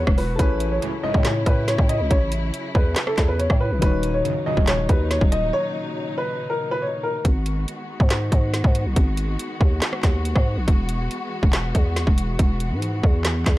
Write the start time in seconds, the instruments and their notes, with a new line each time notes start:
Already playing: synth keys E3 E4 F#4 G#4, string section E3 F#3 B3 F#4, grand piano C#5
0.07 808-style bass E1, kick, cross-stick
0.18 grand piano B4, open hi-hat
0.36 808-style bass A1, string section C#3 C#4 E4, synth keys E4 A4, grand piano B4, kick, closed hi-hat
0.40 synth keys G#4 C#5
0.60 closed hi-hat
0.71 grand piano C#5
0.82 analog polysynth C#2 A2 E3, closed hi-hat
1.03 analog polysynth A1 G#2 C#3, grand piano D#5
1.14 808-style bass A2, kick
1.25 grand piano C#5, snare, clap, closed hi-hat
1.46 808-style bass A2, grand piano B4, kick, closed hi-hat
1.68 grand piano C#5, snare, closed hi-hat
1.78 808-style bass A2, kick
1.89 grand piano D#5, closed hi-hat
2.00 808-style bass C#2
2.10 808-style bass A1, grand piano C#5, kick, closed hi-hat
2.32 closed hi-hat
2.54 closed hi-hat
2.75 808-style bass E2, grand piano B4, kick
2.96 snare, clap, closed hi-hat
3.07 grand piano A4, cross-stick
3.17 808-style bass E2, kick, snare, clap, closed hi-hat
3.28 grand piano B4
3.39 grand piano C#5, closed hi-hat
3.50 808-style bass A2, kick, cross-stick
3.61 grand piano B4
3.71 808-style bass B1
3.79 808-style bass D#1, string section A#2 F#3 D#4, synth keys D#3 D#4, grand piano B4, kick, closed hi-hat
3.83 synth keys F#4 C#5
4.03 closed hi-hat
4.14 grand piano C#5
4.25 analog polysynth A#1 F#2 C#3, closed hi-hat
4.46 analog polysynth A#1 F#2 C#3, grand piano D#5
4.57 808-style bass D#1, kick
4.67 grand piano C#5, snare, clap, closed hi-hat
4.89 808-style bass D#2, grand piano B4, kick, closed hi-hat
5.11 grand piano C#5, snare, closed hi-hat
5.21 808-style bass D#1, kick
5.32 grand piano D#5, closed hi-hat
5.53 grand piano C#5
6.18 grand piano B4
6.50 grand piano A#4
6.71 grand piano B4
6.82 grand piano C#5
7.03 grand piano A#4
7.25 808-style bass G#1, string section D#3 G#3 B3 F#4, kick, closed hi-hat
7.46 closed hi-hat
7.68 closed hi-hat
8.00 808-style bass G#2, kick
8.10 snare, clap, closed hi-hat
8.32 808-style bass G#2, kick, closed hi-hat
8.54 snare, closed hi-hat
8.64 808-style bass G#2, kick
8.75 closed hi-hat
8.86 808-style bass B1
8.96 808-style bass G#1, kick, closed hi-hat
9.17 closed hi-hat
9.39 closed hi-hat
9.61 808-style bass D#2, kick
9.82 snare, clap, closed hi-hat
9.93 cross-stick
10.03 808-style bass D#2, kick, snare, clap, closed hi-hat
10.25 closed hi-hat
10.36 808-style bass G#2, kick, cross-stick
10.57 808-style bass A#1
10.68 808-style bass E1, string section E3, kick, closed hi-hat
10.89 closed hi-hat
11.11 closed hi-hat
11.43 808-style bass E1, kick
11.53 snare, clap, closed hi-hat
11.75 808-style bass E2, kick, closed hi-hat
11.96 snare, closed hi-hat
12.07 808-style bass E1, kick
12.18 closed hi-hat
12.39 808-style bass E1, kick, closed hi-hat
12.60 closed hi-hat
12.71 808-style bass G#2
12.82 closed hi-hat
13.03 808-style bass E2, kick
13.25 snare, clap, closed hi-hat
13.46 808-style bass E2, kick, snare, clap, closed hi-hat